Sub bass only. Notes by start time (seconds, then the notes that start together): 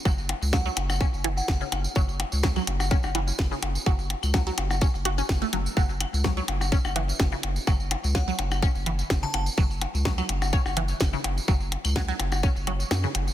0.05 F#1
0.42 C#2
0.77 F#1
1.13 F#1
1.48 F#1
1.72 F#1
1.96 F#1
2.32 C#2
2.67 F#1
3.04 F#1
3.39 F#1
3.63 F#1
3.86 F#1
4.23 C#2
4.58 F#1
4.94 F#1
5.29 F#1
5.53 F#1
5.77 F#1
6.13 C#2
6.48 F#1
6.85 F#1
7.20 F#1
7.44 F#1
7.67 F#1
8.04 C#2
8.39 F#1
8.75 F#1
9.10 F#1
9.34 F#1
9.58 F#1
9.94 C#2
10.29 F#1
10.66 F#1
11.01 F#1
11.24 F#1
11.48 F#1
11.85 C#2
12.20 F#1
12.56 F#1
12.91 F#2
13.15 F#1